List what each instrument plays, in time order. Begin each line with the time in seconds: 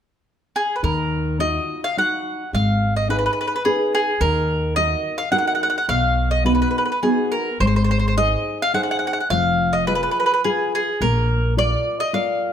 0.56 mandolin G#4
0.76 mandolin B4
0.83 upright bass D#2, nylon-string guitar D#3, mandolin A#4
1.39 nylon-string guitar D#4 F4 F#4, mandolin D#5
1.84 mandolin F5
1.97 nylon-string guitar D#4 F#4, mandolin F#5
2.53 upright bass G#1, nylon-string guitar G#3, mandolin F5
2.96 mandolin D#5
3.09 nylon-string guitar D#4 G#4 B4, mandolin B4
3.19 mandolin B4
3.26 mandolin B4
3.33 mandolin B4
3.41 mandolin B4
3.47 mandolin B4
3.56 mandolin B4
3.65 nylon-string guitar D#4 G#4 B4, mandolin G#4
3.95 mandolin G#4
4.21 upright bass D#2, nylon-string guitar D#3, mandolin A#4
4.76 nylon-string guitar D#4 F#4 A#4, mandolin D#5
5.18 mandolin F5
5.31 nylon-string guitar D#4 F#4 A#4, mandolin F#5
5.38 mandolin F#5
5.47 mandolin F#5
5.55 mandolin F#5
5.63 mandolin F#5
5.70 mandolin F#5
5.78 mandolin F#5
5.88 upright bass B1, nylon-string guitar B2, mandolin F5
6.31 mandolin D#5
6.44 nylon-string guitar B3 D#4 F#4, mandolin B4
6.55 mandolin B4
6.62 mandolin B4
6.71 mandolin B4
6.78 mandolin B4
6.85 mandolin B4
6.92 mandolin B4
7.03 nylon-string guitar B3 D#4 F#4, mandolin G#4
7.32 mandolin A#4
7.60 upright bass G#1, nylon-string guitar G#3, mandolin C5
7.67 mandolin C5
7.76 mandolin C5
7.84 mandolin C5
7.91 mandolin C5
7.99 mandolin C5
8.08 mandolin C5
8.17 nylon-string guitar D#4 G#4 C5, mandolin D#5
8.62 mandolin F5
8.74 nylon-string guitar D#4 G#4 C5, mandolin F#5
8.83 mandolin F#5
8.91 mandolin F#5
8.99 mandolin F#5
9.07 mandolin F#5
9.13 mandolin F#5
9.20 mandolin F#5
9.30 upright bass F1, nylon-string guitar F3, mandolin F5
9.73 mandolin D#5
9.87 nylon-string guitar F4 G#4 B4, mandolin B4
9.95 mandolin B4
10.03 mandolin B4
10.11 mandolin B4
10.20 mandolin B4
10.26 mandolin B4
10.34 mandolin B4
10.44 nylon-string guitar F4 G#4 B4, mandolin G#4
10.75 mandolin G#4
11.01 upright bass A#1, nylon-string guitar A#3, mandolin A#4
11.57 nylon-string guitar F4 A#4 D5, mandolin D5
12.00 mandolin D#5
12.13 nylon-string guitar F4 A#4 D5, mandolin F5